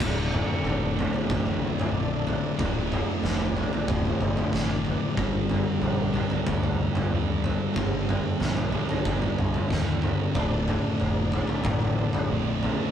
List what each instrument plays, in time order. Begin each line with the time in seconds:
0.00 picked electric bass D1, distorted electric guitar D2 A2 D3, tonewheel organ D4 A4 D5, kick, floor tom, crash
0.32 floor tom, mid tom
0.63 picked electric bass F1, floor tom
0.96 distorted electric guitar D2 A2 D3, floor tom
1.14 floor tom
1.30 picked electric bass A1, kick, floor tom, mid tom
1.47 floor tom
1.79 floor tom, mid tom
1.92 picked electric bass A#1, distorted electric guitar D2 A2
1.97 distorted electric guitar D3
2.27 floor tom
2.57 picked electric bass D1, distorted electric guitar D2 A2 D3, tonewheel organ G4, kick, floor tom
2.92 floor tom, mid tom
3.22 picked electric bass F1, snare, floor tom
3.39 floor tom
3.54 distorted electric guitar D2 A2 D3, floor tom
3.73 floor tom
3.88 picked electric bass D1, kick, floor tom, mid tom
4.05 floor tom
4.21 picked electric bass G1, mid tom
4.37 floor tom, mid tom
4.51 picked electric bass F#1, distorted electric guitar D2 A2 D3, kick, snare
4.85 floor tom
5.14 picked electric bass G1, distorted electric guitar G2 D3, tonewheel organ G3 D4 A4, kick, floor tom
5.19 distorted electric guitar G3
5.49 floor tom, mid tom
5.81 picked electric bass A#1, floor tom
6.12 distorted electric guitar G2 D3 G3, floor tom
6.30 floor tom
6.46 picked electric bass D2, kick, floor tom, mid tom
6.63 floor tom
6.95 floor tom, mid tom
7.11 picked electric bass D#2, distorted electric guitar G2 D3 G3
7.44 floor tom
7.74 picked electric bass G1, distorted electric guitar G2 D3 G3, kick, floor tom
8.09 floor tom, mid tom
8.40 picked electric bass A#1, snare, floor tom
8.57 floor tom
8.72 distorted electric guitar G2 D3 G3, floor tom
8.89 floor tom
9.05 picked electric bass G1, kick, floor tom, mid tom
9.22 floor tom
9.39 picked electric bass C2, mid tom
9.54 floor tom, mid tom
9.69 picked electric bass D#2, distorted electric guitar G2 D3 G3, kick, snare
10.02 floor tom
10.35 picked electric bass D1, distorted electric guitar D2 A2 D3, tonewheel organ A4 D5, kick, floor tom
10.68 floor tom, mid tom
11.00 picked electric bass F1, floor tom
11.32 distorted electric guitar D2 A2 D3, floor tom
11.47 floor tom
11.64 picked electric bass A1, kick, floor tom, mid tom
11.80 floor tom
12.13 floor tom, mid tom
12.28 picked electric bass A#1, distorted electric guitar D2 A2 D3
12.63 floor tom